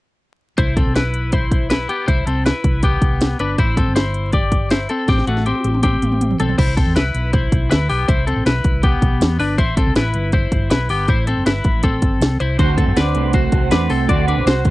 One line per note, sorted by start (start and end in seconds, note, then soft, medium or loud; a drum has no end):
0.58 0.82 C2 medium
0.58 0.77 E4 medium
0.58 0.76 C5 medium
0.58 kick medium
0.58 closed hi-hat medium
0.77 0.96 C4 medium
0.77 0.95 A4 medium
0.77 kick medium
0.77 closed hi-hat medium
0.86 1.85 B1 medium
0.96 1.31 E4 soft
0.96 1.31 B4 medium
0.96 snare medium
0.96 closed hi-hat medium
1.14 closed hi-hat medium
1.32 1.69 E4 soft
1.32 1.68 C5 medium
1.32 kick medium
1.32 closed hi-hat medium
1.51 kick medium
1.51 closed hi-hat medium
1.70 1.90 E4 soft
1.70 1.89 B4 medium
1.70 snare loud
1.70 closed hi-hat medium
1.89 2.07 B3 medium
1.89 2.08 G4 medium
1.89 closed hi-hat medium
2.08 2.24 C2 medium
2.08 2.27 E4 medium
2.08 2.26 C5 medium
2.08 kick medium
2.08 closed hi-hat medium
2.26 2.50 C2 medium
2.26 2.46 C4 medium
2.26 2.45 A4 medium
2.26 closed hi-hat medium
2.46 2.81 E4 soft
2.46 2.81 B4 medium
2.46 snare medium
2.46 closed hi-hat medium
2.64 2.96 C2 medium
2.64 kick medium
2.64 closed hi-hat medium
2.83 3.37 B3 soft
2.83 3.37 G4 medium
2.83 kick medium
2.83 closed hi-hat medium
3.02 3.34 C2 medium
3.02 kick medium
3.02 closed hi-hat medium
3.21 snare loud
3.21 closed hi-hat medium
3.39 3.55 G1 medium
3.39 3.59 D4 soft
3.39 3.58 B4 medium
3.39 closed hi-hat medium
3.58 3.82 A1 medium
3.58 3.78 E4 medium
3.58 3.77 C5 loud
3.58 kick medium
3.58 closed hi-hat medium
3.77 3.96 C4 medium
3.77 3.95 A4 medium
3.77 kick medium
3.77 closed hi-hat medium
3.87 4.86 G1 medium
3.96 4.31 E4 soft
3.96 4.31 C5 medium
3.96 snare loud
3.96 closed hi-hat medium
4.14 closed hi-hat medium
4.33 4.69 G4 soft
4.33 4.69 D5 medium
4.33 kick medium
4.33 closed hi-hat medium
4.52 kick medium
4.52 closed hi-hat medium
4.70 4.90 E4 medium
4.70 4.89 C5 medium
4.70 snare loud
4.70 closed hi-hat medium
4.89 5.08 C4 medium
4.89 5.08 A4 medium
4.89 closed hi-hat medium
5.08 5.24 A1 medium
5.08 5.28 C4 medium
5.08 5.27 G4 medium
5.08 kick medium
5.08 snare soft
5.08 closed hi-hat medium
5.18 snare soft
5.27 5.51 A1 medium
5.27 5.47 A3 medium
5.27 5.46 F#4 medium
5.27 closed hi-hat medium
5.37 snare soft
5.46 5.82 C4 medium
5.46 5.81 G4 medium
5.46 closed hi-hat medium
5.55 high tom soft
5.64 5.96 A1 medium
5.64 closed hi-hat medium
5.64 high tom medium
5.74 mid tom medium
5.83 6.37 C4 medium
5.83 6.36 G4 medium
5.83 kick medium
5.83 closed hi-hat medium
5.83 mid tom medium
6.02 6.34 A1 medium
6.02 closed hi-hat medium
6.02 mid tom medium
6.12 mid tom medium
6.21 closed hi-hat medium
6.21 mid tom medium
6.31 floor tom medium
6.40 6.56 B1 medium
6.40 6.59 C4 soft
6.40 6.58 A4 medium
6.40 closed hi-hat medium
6.40 floor tom medium
6.49 floor tom medium
6.58 6.82 C2 medium
6.58 6.78 E4 medium
6.58 6.76 C5 medium
6.58 kick medium
6.58 closed hi-hat medium
6.58 crash medium
6.77 6.96 C4 soft
6.77 6.95 A4 medium
6.77 kick medium
6.77 closed hi-hat medium
6.86 6.95 E2 medium
6.96 7.12 C2 medium
6.96 7.32 E4 soft
6.96 7.31 B4 medium
6.96 snare loud
6.96 closed hi-hat medium
7.14 7.46 B1 medium
7.14 closed hi-hat medium
7.33 7.69 E4 soft
7.33 7.69 C5 medium
7.33 kick medium
7.33 closed hi-hat medium
7.52 7.68 B1 medium
7.52 kick medium
7.52 closed hi-hat medium
7.70 7.87 D2 medium
7.70 7.90 E4 soft
7.70 7.90 B4 medium
7.70 snare loud
7.70 closed hi-hat medium
7.89 8.06 B1 medium
7.89 8.08 B3 medium
7.89 8.08 G4 medium
7.89 open hi-hat medium
8.08 8.33 C2 medium
8.08 8.28 E4 medium
8.08 8.27 C5 medium
8.08 kick medium
8.08 closed hi-hat medium
8.27 8.46 C4 medium
8.27 8.46 A4 medium
8.27 closed hi-hat medium
8.36 8.44 A1 medium
8.46 8.62 B1 medium
8.46 8.82 E4 soft
8.46 8.81 B4 medium
8.46 snare medium
8.46 closed hi-hat medium
8.64 8.97 C2 medium
8.64 kick medium
8.64 closed hi-hat medium
8.83 9.37 B3 medium
8.83 9.36 G4 medium
8.83 kick medium
8.83 closed hi-hat medium
9.02 9.18 B1 medium
9.02 kick medium
9.02 closed hi-hat medium
9.20 9.37 E2 medium
9.20 snare loud
9.20 closed hi-hat loud
9.39 9.58 G1 medium
9.39 9.59 D4 medium
9.39 9.58 B4 medium
9.39 open hi-hat medium
9.58 9.82 A1 medium
9.58 9.78 E4 medium
9.58 9.77 C5 loud
9.58 kick medium
9.58 closed hi-hat medium
9.77 9.96 C4 medium
9.77 9.96 A4 medium
9.77 kick medium
9.77 closed hi-hat medium
9.87 9.95 C2 medium
9.96 10.12 A1 medium
9.96 10.32 E4 medium
9.96 10.31 B4 medium
9.96 snare loud
9.96 closed hi-hat medium
10.14 10.47 G1 medium
10.14 closed hi-hat medium
10.32 10.69 E4 soft
10.32 10.69 C5 medium
10.32 kick medium
10.32 closed hi-hat medium
10.52 10.68 G1 medium
10.52 kick medium
10.52 closed hi-hat medium
10.70 10.87 B1 medium
10.70 10.90 E4 medium
10.70 10.90 B4 medium
10.70 snare loud
10.70 closed hi-hat medium
10.89 11.05 G1 medium
10.89 11.08 B3 medium
10.89 11.09 G4 medium
10.89 open hi-hat medium
11.08 11.32 A1 medium
11.08 11.28 E4 medium
11.08 11.27 C5 medium
11.08 kick medium
11.08 closed hi-hat medium
11.27 11.47 C4 medium
11.27 11.46 A4 medium
11.27 closed hi-hat medium
11.37 11.45 F#1 medium
11.46 11.62 G1 medium
11.46 11.82 E4 soft
11.46 11.81 B4 medium
11.46 snare loud
11.46 closed hi-hat medium
11.64 12.02 A1 medium
11.64 kick medium
11.64 closed hi-hat medium
11.83 12.37 C4 medium
11.83 12.37 A4 medium
11.83 kick medium
11.83 closed hi-hat medium
12.02 12.18 G1 medium
12.02 kick medium
12.02 closed hi-hat medium
12.21 12.37 C2 medium
12.21 snare loud
12.21 closed hi-hat medium
12.40 12.56 C2 medium
12.40 12.59 E4 medium
12.40 12.58 C5 medium
12.40 closed hi-hat medium
12.58 12.83 D2 medium
12.58 12.87 D3 medium
12.58 12.87 A3 medium
12.58 12.87 C4 medium
12.58 12.77 F#4 medium
12.58 12.86 F#4 medium
12.58 12.78 C5 loud
12.58 12.85 C5 medium
12.58 kick medium
12.58 closed hi-hat medium
12.78 12.97 C4 soft
12.78 12.96 A4 medium
12.78 kick medium
12.78 closed hi-hat medium
12.86 12.95 F#2 medium
12.86 13.14 C4 soft
12.86 13.15 F#4 soft
12.86 13.15 C5 medium
12.96 13.12 D2 medium
12.96 13.32 D4 medium
12.96 13.32 B4 medium
12.96 snare loud
12.96 closed hi-hat medium
13.15 13.47 C2 medium
13.15 13.51 A3 medium
13.15 13.51 C4 medium
13.15 13.53 F#4 medium
13.15 13.53 C5 medium
13.15 closed hi-hat medium
13.33 13.70 F#4 soft
13.33 13.69 C5 medium
13.33 kick medium
13.33 closed hi-hat medium
13.52 13.69 C2 medium
13.52 13.70 A3 medium
13.52 13.71 C4 medium
13.52 13.71 F#4 medium
13.52 13.72 C5 medium
13.52 kick medium
13.52 closed hi-hat medium
13.71 13.87 E2 medium
13.71 14.08 A3 medium
13.71 14.08 C4 medium
13.71 13.91 D4 soft
13.71 14.08 F#4 medium
13.71 13.90 B4 medium
13.71 14.08 C5 medium
13.71 snare loud
13.71 closed hi-hat medium
13.90 14.06 C2 medium
13.90 14.09 C4 medium
13.90 14.09 A4 medium
13.90 open hi-hat medium
14.08 14.33 D2 medium
14.08 14.37 D3 medium
14.08 14.37 A3 medium
14.08 14.37 C4 medium
14.08 14.36 F#4 medium
14.08 14.28 F#4 medium
14.08 14.35 C5 medium
14.08 14.27 D5 medium
14.08 kick medium
14.08 closed hi-hat medium
14.28 14.47 D4 medium
14.28 14.47 B4 medium
14.28 closed hi-hat medium
14.37 14.45 B1 medium
14.37 14.64 C4 soft
14.37 14.65 F#4 soft
14.37 14.65 C5 medium
14.46 14.62 C2 medium
14.46 14.70 F#4 medium
14.46 14.70 C5 medium
14.46 snare loud
14.46 closed hi-hat medium
14.65 14.70 D2 medium
14.65 14.70 A3 medium
14.65 14.70 C4 medium
14.65 14.70 F#4 medium
14.65 14.70 C5 medium
14.65 kick medium
14.65 closed hi-hat medium